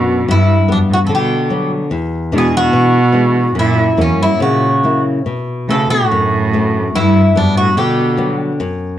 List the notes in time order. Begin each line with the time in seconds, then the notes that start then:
Already playing: F#2 B2 B3 D4 F#4
0.28 G2 E4
0.68 F#2 G3 B3 D4
0.90 A2 F#4
1.05 C#3 A4
1.09 B2 D3
1.15 G4
1.50 F#3 G3 B3
1.91 E2
2.32 B2 E3 G#3 D4
2.38 G#4
2.55 B2 F#4
2.73 B2
3.12 E3 G#3 D4
3.55 F#2 A#2
3.59 E4
3.97 E2 F#3 A#3 E4
4.01 C#4
4.18 G2
4.23 E4
4.39 A#2 C#3 F#4
4.83 F#3 A#3 E4
5.26 B2
5.68 C#3 A3 B3 D4 A4
5.90 A2 F#4
6.11 F#2
6.53 A3 B3 D4
6.95 G2 E4
7.35 F#2 G3 B3 D4
7.54 A2 F#4
7.75 B2 D3 G4
8.17 F#3 G3 B3
8.60 F#2